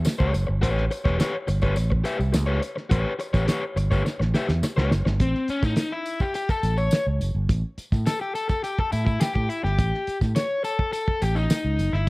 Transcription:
0.05 muted overdriven electric guitar stroke, snare, closed hi-hat, tambourine
0.19 fingered electric bass C#2, overdriven electric guitar G4 B4 C#5, kick
0.33 fingered electric bass F#1, muted overdriven electric guitar stroke, closed hi-hat, tambourine
0.47 fingered electric bass G1, muted overdriven electric guitar stroke
0.61 fingered electric bass A1, overdriven electric guitar G4 B4 C#5, kick, closed hi-hat, tambourine
0.78 snare
0.91 muted overdriven electric guitar stroke, closed hi-hat, tambourine
1.05 fingered electric bass E1, overdriven electric guitar G4 B4 C#5, kick, snare
1.19 overdriven electric guitar G4 B4 C#5, snare, closed hi-hat, tambourine
1.47 fingered electric bass G1, muted overdriven electric guitar stroke, closed hi-hat, tambourine
1.62 overdriven electric guitar G4 B4 C#5, kick, tambourine
1.76 fingered electric bass A1, muted overdriven electric guitar stroke, closed hi-hat, tambourine
1.90 muted overdriven electric guitar stroke, kick
2.04 overdriven electric guitar G4 B4 E5, closed hi-hat, tambourine
2.19 fingered electric bass C2, muted overdriven electric guitar stroke, tambourine
2.32 fingered electric bass C#2, muted overdriven electric guitar stroke, snare, closed hi-hat, tambourine
2.46 overdriven electric guitar G4 B4 C#5
2.61 muted overdriven electric guitar stroke, closed hi-hat, tambourine
2.76 muted overdriven electric guitar stroke, snare
2.90 fingered electric bass A1, overdriven electric guitar G4 B4 C#5, kick, closed hi-hat, tambourine
3.19 muted overdriven electric guitar stroke, closed hi-hat, tambourine
3.33 fingered electric bass A1, overdriven electric guitar G4 B4 C#5, kick, snare, tambourine
3.47 overdriven electric guitar G4 B4 C#5, snare, closed hi-hat, tambourine
3.76 fingered electric bass G1, muted overdriven electric guitar stroke, closed hi-hat, tambourine
3.91 overdriven electric guitar G4 B4 C#5, kick, snare, tambourine
4.05 muted overdriven electric guitar stroke, muted fingered electric bass stroke, snare, tambourine
4.20 fingered electric bass A1, muted overdriven electric guitar stroke, snare
4.34 overdriven electric guitar G4 B4 E5, snare, tambourine
4.48 fingered electric bass E2, muted overdriven electric guitar stroke, snare, tambourine
4.63 muted overdriven electric guitar stroke, snare, tambourine
4.77 fingered electric bass C#2, overdriven electric guitar G4 B4 C#5, snare
4.91 fingered electric bass F#1, muted overdriven electric guitar stroke, snare, tambourine
5.05 fingered electric bass G1, muted overdriven electric guitar stroke, snare
5.20 fingered electric bass A1, overdriven electric guitar C4, kick, closed hi-hat, tambourine
5.35 snare
5.48 overdriven electric guitar C#4, muted fingered electric bass stroke, closed hi-hat, tambourine
5.63 fingered electric bass A2, overdriven electric guitar D#4, kick, snare, tambourine
5.76 snare, closed hi-hat, tambourine
5.92 overdriven electric guitar E4
6.06 closed hi-hat, tambourine
6.20 overdriven electric guitar G4, kick, tambourine
6.34 overdriven electric guitar G4, closed hi-hat, tambourine
6.49 overdriven electric guitar A4, kick, tambourine
6.63 fingered electric bass A1, closed hi-hat, tambourine
6.78 overdriven electric guitar C#5, tambourine
6.91 snare, closed hi-hat, tambourine
7.07 fingered electric bass C#2
7.21 fingered electric bass F#1, closed hi-hat, tambourine
7.35 fingered electric bass G1
7.49 fingered electric bass A1, kick, closed hi-hat, tambourine
7.78 muted fingered electric bass stroke, closed hi-hat, tambourine
7.92 fingered electric bass A2, kick, snare, tambourine
8.06 overdriven electric guitar A4, snare, closed hi-hat, tambourine
8.21 overdriven electric guitar G4
8.35 overdriven electric guitar A4, closed hi-hat, tambourine
8.49 overdriven electric guitar A4, kick, snare, tambourine
8.64 overdriven electric guitar G4, closed hi-hat, tambourine
8.79 overdriven electric guitar A4, kick
8.92 fingered electric bass A2, overdriven electric guitar E4, closed hi-hat, tambourine
9.06 overdriven electric guitar E4, kick, tambourine
9.20 overdriven electric guitar G4, snare, closed hi-hat, tambourine
9.35 fingered electric bass A2, overdriven electric guitar G4, kick
9.49 overdriven electric guitar E4, closed hi-hat, tambourine
9.64 fingered electric bass G1, overdriven electric guitar G4, snare
9.79 fingered electric bass A1, kick, closed hi-hat, tambourine
9.94 snare
10.07 muted fingered electric bass stroke, closed hi-hat, tambourine
10.21 fingered electric bass A2, kick, snare, tambourine
10.36 overdriven electric guitar C#5, snare, closed hi-hat, tambourine
10.64 overdriven electric guitar A4, closed hi-hat, tambourine
10.79 kick
10.93 overdriven electric guitar A4, closed hi-hat, tambourine
11.08 kick
11.22 fingered electric bass A1, overdriven electric guitar G4, closed hi-hat, tambourine
11.35 overdriven electric guitar D#4, tambourine
11.50 snare, closed hi-hat, tambourine
11.65 fingered electric bass C#2
11.79 fingered electric bass F#1, closed hi-hat, tambourine
11.93 fingered electric bass G1, overdriven electric guitar E4, snare

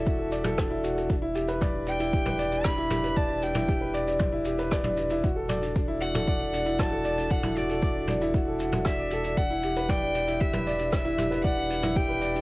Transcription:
Already playing: sub bass E1, grand piano D4 E4 F#4 A4 D5, violin E5
0.06 grand piano F#4, kick, shaker
0.19 grand piano A4
0.32 grand piano D5, shaker
0.44 grand piano A4, mid tom, shaker
0.57 grand piano D4, kick, cross-stick, shaker
0.71 grand piano E4
0.84 grand piano F#4, shaker
0.97 grand piano A4, shaker
1.09 sub bass E1, grand piano D4, kick, shaker
1.22 grand piano E4
1.35 grand piano G4, shaker
1.48 grand piano B4, shaker
1.61 grand piano D5, kick, mid tom, shaker
1.74 grand piano D4
1.86 grand piano D4, violin G5, shaker
2.00 grand piano E4, shaker
2.13 grand piano G4, kick, shaker
2.26 grand piano B4, mid tom
2.39 grand piano D5, shaker
2.52 grand piano D4, shaker
2.64 grand piano D4, violin B5, kick, cross-stick, shaker
2.78 grand piano E4
2.90 grand piano G4, mid tom, shaker
3.04 grand piano B4, shaker
3.16 grand piano D5, violin A5, kick, shaker
3.30 grand piano D4
3.42 grand piano D4, violin G5, shaker
3.55 grand piano E4, mid tom, shaker
3.68 grand piano G4, kick, shaker
3.81 grand piano B4
3.94 grand piano D5, shaker
4.07 grand piano D4, shaker
4.19 grand piano D4, kick, mid tom, shaker
4.32 grand piano E4
4.45 grand piano G4, shaker
4.59 grand piano B4, shaker
4.71 grand piano D5, kick, cross-stick, shaker
4.84 grand piano D4, mid tom
4.97 grand piano D4, shaker
5.10 grand piano E4, shaker
5.23 sub bass E1, grand piano F#4, kick, shaker
5.36 grand piano A4
5.49 grand piano D5, mid tom, shaker
5.62 grand piano D4, shaker
5.75 grand piano D4, kick, shaker
5.88 grand piano E4
6.00 grand piano F#4, violin F#5, shaker
6.14 grand piano A4, mid tom, shaker
6.27 grand piano D5, kick, shaker
6.40 grand piano D4
6.53 grand piano D4, shaker
6.66 grand piano E4, shaker
6.78 grand piano F#4, violin A5, kick, cross-stick, mid tom, shaker
6.92 grand piano A4
7.04 grand piano D5, shaker
7.18 grand piano D4, shaker
7.30 grand piano D4, violin F#5, kick, shaker
7.43 grand piano E4, mid tom
7.56 grand piano F#4, violin D5, shaker
7.69 grand piano A4, shaker
7.82 grand piano D5, kick, shaker
7.96 grand piano D4
8.07 grand piano D4, mid tom, shaker
8.21 grand piano E4, shaker
8.34 grand piano F#4, kick, shaker
8.48 grand piano A4
8.60 grand piano F#5, shaker
8.72 grand piano E4, mid tom, shaker
8.85 grand piano D4, violin E5, kick, cross-stick, shaker
8.99 grand piano D5
9.11 grand piano A4, shaker
9.24 grand piano D4, shaker
9.37 sub bass E1, grand piano D4, violin F#5, kick, shaker
9.51 grand piano E4
9.63 grand piano G4, shaker
9.76 grand piano B4, shaker
9.89 grand piano D5, violin G5, kick, mid tom, shaker
10.02 grand piano D4
10.15 grand piano D4, shaker
10.28 grand piano E4, shaker
10.40 grand piano G4, violin E5, kick, shaker
10.53 grand piano B4, mid tom
10.67 grand piano D5, shaker
10.79 grand piano D4, shaker
10.92 violin E5, kick, cross-stick, shaker
11.05 grand piano E4
11.18 grand piano G4, mid tom, shaker
11.31 grand piano B4, shaker
11.44 grand piano D5, violin F#5, kick, shaker
11.57 grand piano D4
11.69 grand piano D4, shaker
11.82 grand piano E4, mid tom, shaker
11.96 grand piano G4, violin G5, kick, shaker
12.08 grand piano B4
12.21 grand piano D5, shaker
12.34 grand piano D4, shaker

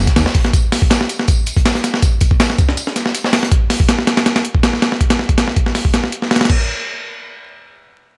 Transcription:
0.07 kick, snare, closed hi-hat
0.16 detuned saw bass D#2, snare, closed hi-hat, tambourine
0.26 snare
0.34 kick, snare, closed hi-hat, open hi-hat
0.44 snare, closed hi-hat
0.53 kick, closed hi-hat, tambourine
0.72 snare, open hi-hat, tambourine
0.82 kick
0.90 snare, closed hi-hat, tambourine
1.00 snare
1.09 closed hi-hat, tambourine
1.19 snare
1.28 kick, closed hi-hat, tambourine
1.46 closed hi-hat, tambourine
1.56 kick, closed hi-hat
1.66 snare, closed hi-hat, tambourine
1.75 snare, closed hi-hat
1.84 snare, closed hi-hat, tambourine
1.94 snare
2.02 kick, closed hi-hat, tambourine
2.21 kick, closed hi-hat, tambourine
2.31 kick
2.40 snare, closed hi-hat, tambourine
2.50 snare
2.58 kick, closed hi-hat, tambourine
2.69 snare
2.77 closed hi-hat, tambourine
2.87 snare
2.96 snare, closed hi-hat, tambourine
3.06 snare
3.14 closed hi-hat, tambourine
3.24 snare
3.33 snare, closed hi-hat, open hi-hat
3.43 snare, closed hi-hat
3.52 kick, closed hi-hat
3.70 snare, open hi-hat
3.80 kick
3.89 snare, closed hi-hat
3.99 snare
4.07 snare, closed hi-hat
4.17 snare, closed hi-hat
4.26 snare, closed hi-hat
4.36 snare, closed hi-hat
4.45 closed hi-hat
4.55 kick
4.63 snare, closed hi-hat
4.73 snare
4.82 snare, closed hi-hat
4.92 snare
5.01 kick, closed hi-hat
5.10 snare, closed hi-hat
5.19 snare
5.29 kick, closed hi-hat
5.38 snare, closed hi-hat
5.48 snare
5.57 kick, closed hi-hat
5.66 snare
5.75 snare, open hi-hat
5.85 kick
5.94 snare, closed hi-hat
6.04 snare
6.12 closed hi-hat
6.22 snare
6.31 snare, closed hi-hat
6.36 snare, closed hi-hat
6.41 snare, closed hi-hat
6.45 snare, closed hi-hat
6.49 kick, crash

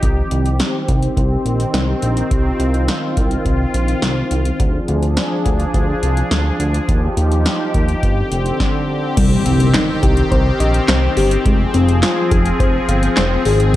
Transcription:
Already playing: analog synth pad G4
0.03 analog synth bass C2, analog synth pad D#3 C4, kick, closed hi-hat
0.31 analog synth bass C2, closed hi-hat
0.46 closed hi-hat
0.60 snare, closed hi-hat
0.88 analog synth bass C2, kick, closed hi-hat
1.02 closed hi-hat
1.17 analog synth bass C2, kick, closed hi-hat
1.45 analog synth bass A#1, closed hi-hat
1.60 closed hi-hat
1.74 analog synth bass C2, snare, closed hi-hat
2.02 analog synth bass A#1, closed hi-hat
2.17 closed hi-hat
2.31 analog synth bass C2, analog synth pad F4, kick, closed hi-hat
2.60 analog synth bass C2, closed hi-hat
2.74 closed hi-hat
2.88 snare, closed hi-hat
3.17 analog synth bass C2, kick, closed hi-hat
3.31 closed hi-hat
3.45 analog synth bass C2, kick, closed hi-hat
3.74 analog synth bass A#1, closed hi-hat
3.88 closed hi-hat
4.02 analog synth bass C2, snare, closed hi-hat
4.31 analog synth bass C2, closed hi-hat
4.45 closed hi-hat
4.60 analog synth bass D2, analog synth pad F3 D4 G#4, kick, closed hi-hat
4.88 analog synth bass D2, closed hi-hat
5.03 closed hi-hat
5.17 snare, closed hi-hat
5.46 analog synth bass D2, kick, closed hi-hat
5.60 closed hi-hat
5.74 analog synth bass D2, kick, closed hi-hat
6.03 analog synth bass C2, closed hi-hat
6.17 closed hi-hat
6.31 analog synth bass D2, snare, closed hi-hat
6.60 analog synth bass D2, closed hi-hat
6.74 closed hi-hat
6.89 analog synth bass D#2, analog synth pad F3 D#4 G4, kick, closed hi-hat
7.17 analog synth bass D#2, closed hi-hat
7.32 closed hi-hat
7.46 snare, closed hi-hat
7.74 analog synth bass D#2, kick, closed hi-hat
7.88 closed hi-hat
8.03 analog synth bass G1, analog synth pad D3 C4, kick, closed hi-hat
8.31 analog synth bass F1, closed hi-hat
8.46 closed hi-hat
8.60 kick, snare
9.17 analog synth bass C2, analog synth pad D#3 C4 G4, synth arpeggio sound G3, kick, closed hi-hat, crash, impact
9.46 analog synth bass C2, synth arpeggio sound C4, closed hi-hat
9.60 closed hi-hat
9.74 synth arpeggio sound D#4, snare, clap, closed hi-hat
10.03 analog synth bass C2, synth arpeggio sound G4, kick, closed hi-hat
10.17 closed hi-hat
10.31 analog synth bass C2, synth arpeggio sound C5, kick, closed hi-hat
10.60 analog synth bass A#1, synth arpeggio sound D#5, closed hi-hat
10.74 closed hi-hat
10.88 analog synth bass C2, synth arpeggio sound C5, snare, clap, closed hi-hat
11.17 analog synth bass G1, synth arpeggio sound G4, open hi-hat
11.31 closed hi-hat
11.45 analog synth bass F1, analog synth pad F3 G#4, synth arpeggio sound G#3, kick, closed hi-hat
11.74 analog synth bass F1, synth arpeggio sound C4, closed hi-hat
11.89 closed hi-hat
12.03 synth arpeggio sound F4, snare, clap, closed hi-hat
12.31 analog synth bass F1, synth arpeggio sound G#4, kick, closed hi-hat
12.46 closed hi-hat
12.60 analog synth bass F1, synth arpeggio sound C5, kick, closed hi-hat
12.88 analog synth bass G1, synth arpeggio sound F5, closed hi-hat
13.03 closed hi-hat
13.17 analog synth bass F1, synth arpeggio sound C5, snare, clap, closed hi-hat
13.45 analog synth bass G#1, analog synth pad D#3 G#4, synth arpeggio sound G#4, open hi-hat
13.60 closed hi-hat

